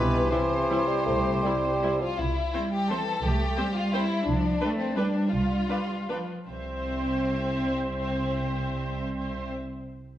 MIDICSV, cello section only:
0, 0, Header, 1, 2, 480
1, 0, Start_track
1, 0, Key_signature, 0, "major"
1, 0, Tempo, 377358
1, 1357, Time_signature, 3, 2, 24, 8
1, 2312, Tempo, 362100
1, 3752, Tempo, 340136
1, 6152, Tempo, 361446
1, 7112, Tempo, 379267
1, 10952, Tempo, 353982
1, 13419, End_track
2, 0, Start_track
2, 0, Title_t, "Cello section"
2, 0, Program_c, 0, 48
2, 0, Note_on_c, 0, 47, 49
2, 390, Note_off_c, 0, 47, 0
2, 396, Note_on_c, 0, 48, 41
2, 2515, Note_off_c, 0, 48, 0
2, 3274, Note_on_c, 0, 55, 40
2, 3720, Note_off_c, 0, 55, 0
2, 3758, Note_on_c, 0, 52, 45
2, 4228, Note_off_c, 0, 52, 0
2, 4231, Note_on_c, 0, 57, 55
2, 4705, Note_off_c, 0, 57, 0
2, 4711, Note_on_c, 0, 55, 45
2, 5670, Note_on_c, 0, 53, 48
2, 5671, Note_off_c, 0, 55, 0
2, 6144, Note_off_c, 0, 53, 0
2, 6165, Note_on_c, 0, 57, 56
2, 6634, Note_off_c, 0, 57, 0
2, 6642, Note_on_c, 0, 55, 43
2, 8084, Note_off_c, 0, 55, 0
2, 8086, Note_on_c, 0, 53, 30
2, 8337, Note_off_c, 0, 53, 0
2, 8573, Note_on_c, 0, 36, 34
2, 12478, Note_off_c, 0, 36, 0
2, 13419, End_track
0, 0, End_of_file